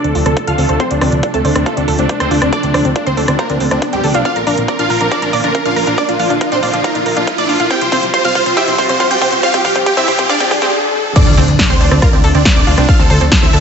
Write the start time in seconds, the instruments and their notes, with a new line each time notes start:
Already playing: analog synth pad C3 F3 A3 D4, riser
0.04 analog synth bass D2, synth pluck C4 A5, supersaw synth A4, closed hi-hat
0.15 analog synth bass D2, synth pluck F4, open hi-hat
0.26 analog synth bass D2, synth pluck C4 A5, supersaw synth A4, cross-stick, closed hi-hat
0.37 supersaw synth A4, synth pluck A5, kick, closed hi-hat
0.47 analog synth bass D2, supersaw synth F4 F5, synth pluck A4 F6, closed hi-hat
0.58 analog synth bass D2, synth pluck C4 A5, supersaw synth A4, open hi-hat
0.69 analog synth bass D2, supersaw synth A4, synth pluck C5 A5, closed hi-hat
0.80 synth pluck C4 C6, supersaw synth C4 C5, kick, closed hi-hat
0.91 analog synth bass D2, supersaw synth D4, synth pluck F4 D5, closed hi-hat
1.01 analog synth bass D2, synth pluck C4 D5, supersaw synth D4, cross-stick, open hi-hat
1.12 analog synth bass D2, closed hi-hat
1.23 supersaw synth D4, synth pluck A4 D5, kick, closed hi-hat
1.34 analog synth bass D2, supersaw synth A3 A4, synth pluck C4 A5, closed hi-hat
1.45 analog synth bass D2, supersaw synth D4, synth pluck C5 D5, open hi-hat
1.55 analog synth bass D2, synth pluck C4 D5, supersaw synth D4, cross-stick, closed hi-hat
1.66 supersaw synth A3 A4, synth pluck F4 A5, kick, closed hi-hat
1.77 analog synth bass D2, synth pluck C4 D5, supersaw synth D4, closed hi-hat
1.88 analog synth bass D2, synth pluck A4, open hi-hat
1.99 analog synth bass D2, synth pluck C4 D5, supersaw synth D4, closed hi-hat
2.09 supersaw synth D4, synth pluck C5 D5, kick, closed hi-hat
2.20 analog synth bass D2, synth pluck C4 C6, supersaw synth C4 C5, cross-stick, closed hi-hat
2.31 analog synth bass D2, supersaw synth D4, synth pluck F4 D5, open hi-hat
2.42 analog synth bass D2, synth pluck C4 D5, supersaw synth D4, cross-stick, closed hi-hat
2.53 supersaw synth D4 D5, synth pluck A4 D6, kick, closed hi-hat
2.63 analog synth bass D2, synth pluck C4 D5, supersaw synth D4, closed hi-hat
2.74 analog synth bass D2, supersaw synth D4, synth pluck C5 D5, cross-stick, open hi-hat
2.85 analog synth bass D2, synth pluck C4, closed hi-hat
2.96 supersaw synth D4, synth pluck F4 D5, kick, closed hi-hat
3.07 analog synth bass D2, synth pluck C4 C6, supersaw synth C4 C5, closed hi-hat
3.17 analog synth bass D2, supersaw synth D4, synth pluck A4 D5, open hi-hat
3.28 analog synth bass D2, synth pluck C4 D5, supersaw synth D4, cross-stick, closed hi-hat
3.39 supersaw synth A#3 A#4, synth pluck C5 A#5, kick, closed hi-hat
3.50 analog synth bass D2, synth pluck C4 D5, supersaw synth D4, closed hi-hat
3.60 analog synth bass D2, synth pluck C4, open hi-hat
3.71 analog synth bass D2, synth pluck C4 D5, supersaw synth D4, cross-stick, closed hi-hat
3.82 supersaw synth D4, synth pluck D5, kick, closed hi-hat
3.93 analog synth bass D1, supersaw synth G3 G4, synth pluck C4 G5, closed hi-hat
4.04 analog synth bass D2, supersaw synth D4, synth pluck A4 D5, open hi-hat
4.14 analog synth bass C2, supersaw synth D4, synth pluck F4 D5, closed hi-hat
4.25 analog synth pad D3 F3 A#3 F4, synth pluck D4 F6, supersaw synth F4 F5, kick, closed hi-hat
4.36 analog synth bass A#1, supersaw synth A#4, synth pluck A#4 A#5, closed hi-hat
4.47 analog synth bass A#1, synth pluck D4 A#5, supersaw synth A#4, open hi-hat
4.58 analog synth bass A#1, closed hi-hat
4.68 supersaw synth A#4, synth pluck D5 A#5, kick, closed hi-hat
4.79 analog synth bass A#1, synth pluck D4 F6, supersaw synth F4 F5, closed hi-hat
4.90 analog synth bass A#1, supersaw synth A#4, synth pluck F5 A#5, open hi-hat
5.01 analog synth bass A#1, synth pluck D4 A#5, supersaw synth A#4, closed hi-hat
5.11 supersaw synth D4 D5, synth pluck A#4 D6, kick, closed hi-hat
5.22 analog synth bass A#1, synth pluck D4 A#5, supersaw synth A#4, closed hi-hat
5.33 analog synth bass A#1, synth pluck D5, open hi-hat
5.44 analog synth bass A#1, synth pluck D4 A#5, supersaw synth A#4, closed hi-hat
5.55 supersaw synth A#4, synth pluck F5 A#5, kick, closed hi-hat
5.65 analog synth bass A#1, synth pluck D4 F6, supersaw synth F4 F5, closed hi-hat
5.76 analog synth bass A#1, supersaw synth A#4, synth pluck A#4 A#5, open hi-hat
5.87 analog synth bass A#1, synth pluck D4 A#5, supersaw synth A#4, closed hi-hat
5.98 supersaw synth D4 D5, synth pluck D5 D6, kick, closed hi-hat
6.09 analog synth bass A#1, synth pluck D4 F5, supersaw synth F4, closed hi-hat
6.19 analog synth bass A#1, supersaw synth F4, synth pluck F5, open hi-hat
6.30 analog synth bass A#1, synth pluck D4, closed hi-hat
6.41 supersaw synth F4, synth pluck A#4 F5, kick, closed hi-hat
6.52 analog synth bass A#1, supersaw synth C4 C5, synth pluck D4 C6, closed hi-hat
6.63 analog synth bass A#1, supersaw synth F4, synth pluck D5 F5, open hi-hat
6.73 analog synth bass A#1, synth pluck D4 F5, supersaw synth F4, closed hi-hat
6.84 supersaw synth A#3 A#4, synth pluck F5 A#5, kick, closed hi-hat
6.95 analog synth bass A#1, synth pluck D4 F5, supersaw synth F4, closed hi-hat
7.06 analog synth bass A#1, synth pluck A#4, open hi-hat
7.17 analog synth bass A#1, synth pluck D4 F5, supersaw synth F4, closed hi-hat
7.27 supersaw synth F4, synth pluck F5, kick, closed hi-hat
7.38 analog synth bass A#1, supersaw synth D4 D5, synth pluck D5 D6, closed hi-hat
7.49 analog synth bass A#1, synth pluck D4 F5, supersaw synth F4, open hi-hat
7.60 analog synth bass A#1, supersaw synth F4, synth pluck F5, closed hi-hat
7.70 analog synth pad C3 F3 G3, synth pluck C4 G6, supersaw synth G4 G5, kick, closed hi-hat
7.81 analog synth bass C2, synth pluck G4 C6, supersaw synth C5, closed hi-hat
7.92 analog synth bass C2, synth pluck C4 C6, supersaw synth C5, kick, open hi-hat
8.03 analog synth bass C2, closed hi-hat
8.14 synth pluck C5 C6, supersaw synth C5, kick, closed hi-hat
8.25 analog synth bass C2, synth pluck C4 F6, supersaw synth F4 F5, closed hi-hat
8.35 analog synth bass C2, supersaw synth C5, synth pluck F5 C6, kick, open hi-hat
8.46 analog synth bass C2, synth pluck C4 C6, supersaw synth C5, closed hi-hat
8.57 supersaw synth E4 E5, synth pluck G4 E6, kick, closed hi-hat
8.68 analog synth bass C2, synth pluck C4 C6, supersaw synth C5, closed hi-hat
8.78 analog synth bass C2, synth pluck C5, kick, open hi-hat
8.89 analog synth bass C2, synth pluck C4 C6, supersaw synth C5, closed hi-hat
9.00 supersaw synth C5, synth pluck F5 C6, kick, closed hi-hat
9.11 analog synth bass C2, synth pluck C4 G6, supersaw synth G4 G5, closed hi-hat
9.21 analog synth bass C2, synth pluck G4 C6, supersaw synth C5, kick, open hi-hat
9.32 analog synth bass C2, synth pluck C4 C6, supersaw synth C5, closed hi-hat
9.43 supersaw synth F4 F5, synth pluck C5 F6, kick, closed hi-hat
9.54 analog synth bass C2, synth pluck C4 G5, supersaw synth G4, kick, closed hi-hat
9.65 analog synth bass C2, supersaw synth G4, synth pluck F5 G5, kick, open hi-hat
9.76 analog synth bass C2, synth pluck C4, kick, closed hi-hat
9.86 synth pluck G4 G5, supersaw synth G4, kick, closed hi-hat
9.97 analog synth bass C2, synth pluck C4 E6, supersaw synth E4 E5, kick, closed hi-hat
10.08 analog synth bass C2, supersaw synth G4, synth pluck C5 G5, kick, open hi-hat
10.19 analog synth bass C2, synth pluck C4 G5, supersaw synth G4, kick, closed hi-hat
10.29 supersaw synth D4 D5, synth pluck F5 D6, kick, closed hi-hat, swell
10.40 analog synth bass C2, synth pluck C4 G5, supersaw synth G4, kick, closed hi-hat
10.51 analog synth bass C2, synth pluck G4, kick, open hi-hat
10.62 analog synth bass C2, synth pluck C4 G5, supersaw synth G4, kick, closed hi-hat
11.16 analog synth pad C3 F3 A3 D4, synth pluck C4 D6, supersaw synth D4 D5, kick, closed hi-hat, crash, impact
11.27 analog synth bass D2, supersaw synth D4, synth pluck F4 D5
11.37 analog synth bass D2, synth pluck C4 D5, supersaw synth D4, open hi-hat
11.48 analog synth bass D2, closed hi-hat
11.59 supersaw synth D4, synth pluck A4 D5, kick, snare, closed hi-hat
11.70 analog synth bass D2, supersaw synth C4 C5, synth pluck C4 C6, closed hi-hat
11.81 analog synth bass D2, supersaw synth D4, synth pluck C5 D5, open hi-hat
11.91 analog synth bass D2, synth pluck C4 D5, supersaw synth D4, cross-stick, closed hi-hat
12.02 supersaw synth A#3 A#4, synth pluck F4 A#5, kick, cross-stick, closed hi-hat
12.13 analog synth bass D2, synth pluck C4 D5, supersaw synth D4
12.24 analog synth bass D2, synth pluck A4, open hi-hat
12.35 analog synth bass D2, synth pluck C4 D5, supersaw synth D4, closed hi-hat
12.45 supersaw synth D4, synth pluck C5 D5, kick, snare, closed hi-hat
12.56 analog synth bass D1, synth pluck C4 D6, supersaw synth D4 D5, closed hi-hat
12.67 analog synth bass D2, supersaw synth D4, synth pluck F4 D5, open hi-hat
12.78 analog synth bass C2, synth pluck C4 D5, supersaw synth D4, cross-stick, closed hi-hat
12.88 supersaw synth F4 F5, synth pluck A4 F6, kick, closed hi-hat
12.99 analog synth bass D2, synth pluck C4 A5, supersaw synth A4
13.10 analog synth bass D2, supersaw synth A4, synth pluck C5 A5, open hi-hat
13.21 analog synth bass D2, synth pluck C4, closed hi-hat
13.32 synth pluck F4 A5, supersaw synth A4, kick, snare, closed hi-hat
13.42 analog synth bass D2, synth pluck C4 E6, supersaw synth E4 E5, closed hi-hat
13.53 analog synth bass D2, synth pluck A4 A5, supersaw synth A4, open hi-hat